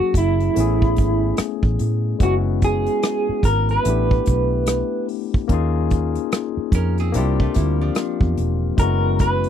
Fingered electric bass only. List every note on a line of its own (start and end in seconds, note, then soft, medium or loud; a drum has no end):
0.00 muted fingered electric bass stroke soft
0.14 0.48 F#1 medium
0.57 1.00 A1 medium
0.99 1.32 G#1 medium
1.39 muted fingered electric bass stroke soft
1.63 1.76 A1 medium
1.80 2.13 A2 medium
2.20 2.87 F#1 medium
3.29 muted fingered electric bass stroke soft
3.44 3.77 G#1 medium
3.86 4.19 A1 loud
4.28 4.81 B1 medium
5.50 6.16 D#2 medium
6.57 muted fingered electric bass stroke soft
6.72 7.16 F2 medium
7.15 7.48 C2 medium
7.57 7.89 D2 medium
8.21 8.34 E2 loud
8.38 8.71 E1 medium
8.78 9.45 F#1 loud